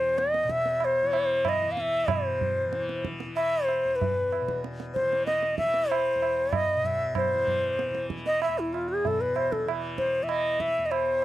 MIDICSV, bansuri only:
0, 0, Header, 1, 2, 480
1, 0, Start_track
1, 0, Tempo, 636267
1, 1570, Time_signature, 4, 2, 24, 8
1, 3965, Tempo, 628931
1, 8537, End_track
2, 0, Start_track
2, 0, Title_t, "Bansuri"
2, 0, Program_c, 0, 73
2, 0, Note_on_c, 0, 72, 89
2, 138, Note_on_c, 0, 75, 93
2, 149, Note_off_c, 0, 72, 0
2, 382, Note_on_c, 0, 76, 104
2, 393, Note_off_c, 0, 75, 0
2, 637, Note_on_c, 0, 72, 93
2, 649, Note_off_c, 0, 76, 0
2, 1120, Note_on_c, 0, 75, 93
2, 1131, Note_off_c, 0, 72, 0
2, 1293, Note_on_c, 0, 77, 71
2, 1305, Note_off_c, 0, 75, 0
2, 1361, Note_on_c, 0, 76, 94
2, 1372, Note_off_c, 0, 77, 0
2, 1588, Note_on_c, 0, 72, 76
2, 1599, Note_off_c, 0, 76, 0
2, 2299, Note_off_c, 0, 72, 0
2, 2535, Note_on_c, 0, 76, 102
2, 2749, Note_on_c, 0, 72, 86
2, 2760, Note_off_c, 0, 76, 0
2, 2984, Note_on_c, 0, 71, 73
2, 2995, Note_off_c, 0, 72, 0
2, 3475, Note_off_c, 0, 71, 0
2, 3727, Note_on_c, 0, 72, 91
2, 3949, Note_off_c, 0, 72, 0
2, 3970, Note_on_c, 0, 75, 89
2, 4192, Note_off_c, 0, 75, 0
2, 4210, Note_on_c, 0, 76, 97
2, 4456, Note_on_c, 0, 72, 91
2, 4468, Note_off_c, 0, 76, 0
2, 4946, Note_on_c, 0, 75, 94
2, 4958, Note_off_c, 0, 72, 0
2, 5187, Note_on_c, 0, 76, 85
2, 5198, Note_off_c, 0, 75, 0
2, 5418, Note_off_c, 0, 76, 0
2, 5422, Note_on_c, 0, 72, 93
2, 6108, Note_off_c, 0, 72, 0
2, 6260, Note_on_c, 0, 75, 93
2, 6368, Note_off_c, 0, 75, 0
2, 6384, Note_on_c, 0, 76, 89
2, 6508, Note_on_c, 0, 64, 74
2, 6519, Note_off_c, 0, 76, 0
2, 6615, Note_on_c, 0, 65, 78
2, 6626, Note_off_c, 0, 64, 0
2, 6735, Note_on_c, 0, 68, 79
2, 6746, Note_off_c, 0, 65, 0
2, 6874, Note_on_c, 0, 69, 83
2, 6885, Note_off_c, 0, 68, 0
2, 6981, Note_on_c, 0, 71, 81
2, 6992, Note_off_c, 0, 69, 0
2, 7095, Note_on_c, 0, 72, 82
2, 7106, Note_off_c, 0, 71, 0
2, 7220, Note_on_c, 0, 69, 69
2, 7231, Note_off_c, 0, 72, 0
2, 7335, Note_off_c, 0, 69, 0
2, 7569, Note_on_c, 0, 72, 90
2, 7762, Note_on_c, 0, 76, 63
2, 7774, Note_off_c, 0, 72, 0
2, 7806, Note_on_c, 0, 75, 81
2, 7817, Note_off_c, 0, 76, 0
2, 8048, Note_on_c, 0, 76, 97
2, 8059, Note_off_c, 0, 75, 0
2, 8239, Note_on_c, 0, 75, 61
2, 8251, Note_off_c, 0, 76, 0
2, 8286, Note_on_c, 0, 72, 89
2, 8298, Note_off_c, 0, 75, 0
2, 8537, Note_off_c, 0, 72, 0
2, 8537, End_track
0, 0, End_of_file